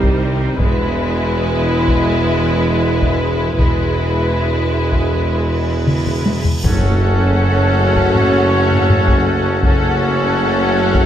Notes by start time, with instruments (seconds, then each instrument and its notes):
Already playing: tuba C2, double bass section C2, cello section C3, trombone section D#3 G3, viola section G3, french horn section C4 G4, violin section D#4 C5
0.03 taiko
0.59 double bass section E1, tuba E1, cello section E2, trombone section E3 G#3, viola section G#3, french horn section B3 E4, violin section E4 B4, taiko
1.89 taiko
3.01 taiko
3.58 double bass section E1, tuba E1, cello section E2, trombone section E3 G#3, viola section G#3, french horn section B3 E4, violin section E4 B4, taiko, cymbal swell
4.93 taiko
5.87 taiko mid
6.07 taiko mid
6.26 taiko high
6.45 taiko low
6.64 tuba F#1, double bass section F#1, cello section F#2, timpani F#2, trombone section C#3 A3, french horn section C#4 F#4, pipe organ C#4 F#4 A4 C#5, viola section C#4, violin section A4 F#5, trumpet section C#5, taiko, impact
7.96 taiko
8.15 taiko low-mid
8.71 taiko low-mid
8.90 taiko low-mid
9.08 taiko
9.64 tuba F#1, double bass section F#1, cello section F#2, trombone section C#3 A3, french horn section C#4 F#4, pipe organ C#4 F#4 A4 C#5, viola section C#4, violin section A4 F#5, trumpet section C#5, taiko
10.95 taiko